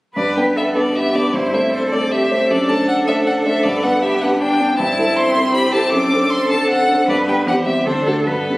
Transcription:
0.16 G2 B3 B4 D5
0.37 B3 D4 B4 G5
0.56 A4 E5
0.75 B3 D4 B4 D5
0.95 B3 G4 E5
1.15 B3 D4 B4 D5
1.33 G2 C4 E4 C5
1.53 A3 C4 C5 E5
1.73 A4 C5
1.92 A3 C4 C5 D5
2.12 C4 G4 E5
2.31 A3 C4 C5
2.50 F#2 D4 A4 D5
2.69 A3 D4 C5 A5
2.88 F#5
3.07 A3 D4 C5 E5
3.27 F#5
3.46 A3 D4 C5 E5
3.63 G2 B3 D5
3.83 B3 D4 B4 F#5
4.02 B3 G4 E5
4.21 B3 D4 B4 F#5
4.40 D4 G5
4.61 B3 D4 B4
4.77 G2 C4 E4 A5
4.98 C4 E4 A4
5.16 C6
5.36 C4 E4 A4
5.54 G4 B5
5.74 C4 E4 A4 A5
5.92 F#2 A4 D6
6.11 C4 D4 A4
6.30 C6
6.50 C4 D4 A4 A5
6.70 F#5
6.88 C4 D4 A4
7.08 G2 B3 B4 D5
7.27 B3 D4 G4 G5
7.46 E2 C4 G4 F#5
7.66 G3 C4 G4 E5
7.86 D2 D4 A4 C5
8.07 A3 D4 F#4 A4
8.27 G2 B3 A4 B4
8.49 B3 D4 G4

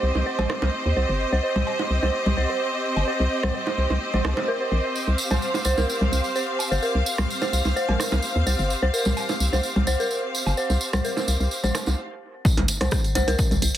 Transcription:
Already playing: C4 G4 C5 D#5
0.03 C2
0.15 C2, low bongo
0.26 C5
0.39 A#1 C5, cowbell, low conga
0.50 cross-stick, low bongo
0.62 C2, low bongo
0.86 D#2
0.97 C2 C5
1.09 G1
1.32 C2 C5
1.43 C5
1.56 C2, low conga
1.67 cowbell
1.79 low bongo
1.90 C2
2.03 C2 C5, low bongo
2.26 C2, low conga
2.37 C2 C5
2.50 C5
2.96 G1, cowbell
3.08 C5
3.20 C2
3.43 C2 C5, cross-stick, low conga
3.54 C5
3.67 low bongo
3.78 C2
3.90 C2, low bongo
4.14 A#1 C5, low conga
4.25 C2, cross-stick, cowbell, low bongo
4.37 C5, low bongo
4.48 A#4
4.61 C5
4.72 A#1
4.95 tambourine
5.07 C2
5.12 F5
5.18 tambourine
5.30 C2 C5, tambourine, cowbell, low conga
5.42 tambourine
5.54 tambourine, low bongo
5.65 C2 C5, tambourine
5.77 C2 A#4, tambourine, low bongo
5.90 tambourine
6.01 C2, low conga
6.12 C2, tambourine
6.24 tambourine
6.36 C5, tambourine
6.59 tambourine, cowbell
6.71 G1 C5, tambourine
6.82 A#4, tambourine
6.95 C2
7.06 tambourine
7.18 C2, cross-stick, tambourine, low conga
7.30 tambourine
7.42 C5, tambourine, low bongo
7.53 C2, tambourine
7.65 C2, tambourine, low bongo
7.76 C5, tambourine
7.89 A#1 A#4, cowbell, low conga
8.00 cross-stick, tambourine, low bongo
8.12 C2, tambourine, low bongo
8.22 tambourine
8.36 D#2
8.47 C2 C5, tambourine
8.59 G1, tambourine
8.70 tambourine
8.82 C2 C5
8.93 A#4, tambourine
9.05 C2, tambourine, low conga
9.17 tambourine, cowbell
9.29 tambourine, low bongo
9.40 C2, tambourine
9.53 C2 C5, tambourine, low bongo
9.63 tambourine
9.76 C2, low conga
9.87 C2 C5, tambourine
10.00 A#4, tambourine
10.11 tambourine
10.35 tambourine
10.46 G1, tambourine, cowbell
10.57 C5, tambourine
10.70 C2, tambourine
10.81 tambourine
10.93 C2 C5, cross-stick, tambourine, low conga
11.04 A#4, tambourine
11.17 tambourine, low bongo
11.28 C2, tambourine
11.40 C2, tambourine
11.51 tambourine
11.63 A#1 C5, tambourine, low conga
11.75 cross-stick, tambourine, cowbell, low bongo
11.86 C2, tambourine, low bongo
12.45 kick, tambourine
12.57 C2, closed hi-hat, low bongo
12.68 closed hi-hat, tambourine
12.81 C2 C5, cross-stick, closed hi-hat, tambourine, cowbell, low bongo, low conga
12.91 kick, cross-stick, tambourine
13.04 closed hi-hat, tambourine
13.15 C2 C5, closed hi-hat, tambourine, low bongo
13.28 C2 A#4, closed hi-hat, tambourine, low bongo
13.38 kick, tambourine
13.51 C2, closed hi-hat, tambourine, low conga
13.62 C2, closed hi-hat, tambourine
13.75 closed hi-hat

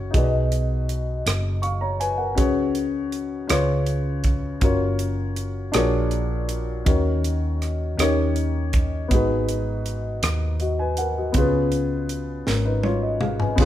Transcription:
Already playing: F#1 C#4 E4 F#4 A#4 C#5
0.11 B1 B2 D#4 F#4 G#4, kick, closed hi-hat
0.16 B4 D5
0.24 D#5
0.52 closed hi-hat
0.89 closed hi-hat
1.26 F#1, cross-stick, closed hi-hat
1.62 F5 C#6, closed hi-hat
1.81 C#5 A#5
2.00 B4 G#5, closed hi-hat
2.18 A#4 F#5
2.35 C#2 C#3 C#4 F#4 G#4 B4 C#5, kick, closed hi-hat
2.75 closed hi-hat
3.12 closed hi-hat
3.47 C#2 C#3 C#4 F4 G#4 B4 C#5, cross-stick, closed hi-hat
3.86 closed hi-hat
4.24 kick, closed hi-hat
4.60 F#1 C#4 F4 F#4 A#4, kick, closed hi-hat
4.65 C#5
4.99 closed hi-hat
5.36 closed hi-hat
5.72 A#1 A#2 D4 F#4 G#4 A#4 C#5, cross-stick, closed hi-hat
6.11 closed hi-hat
6.49 closed hi-hat
6.85 D#2 D#3 C#4 D#4 F#4 A#4 C#5, kick, closed hi-hat
7.24 closed hi-hat
7.62 cross-stick, closed hi-hat
7.97 D#2 D#3 C#4 D#4 G4 A#4 C#5, cross-stick, closed hi-hat
8.36 closed hi-hat
8.73 kick, closed hi-hat
9.08 G#1 G#2 B3 D#4 F#4, kick, closed hi-hat
9.13 G#4 B4
9.49 closed hi-hat
9.86 closed hi-hat
10.23 D#2, cross-stick, closed hi-hat
10.60 F#4 D#5, closed hi-hat
10.79 B4 G#5
10.97 A#4 F#5, closed hi-hat
11.18 F#4 D#5
11.32 C#2 C#3 B3 C#4 F4, kick, closed hi-hat
11.37 G#4 B4
11.72 closed hi-hat
12.09 closed hi-hat
12.47 G#1 C#4 A#4, snare
12.65 D#4 B4
12.83 F4 C#5, high tom
13.03 D#5
13.21 G#4 F5, mid tom
13.40 B4 G#5, floor tom
13.56 C#2 C#3 B3 C#4 F4, kick, crash
13.60 G#4

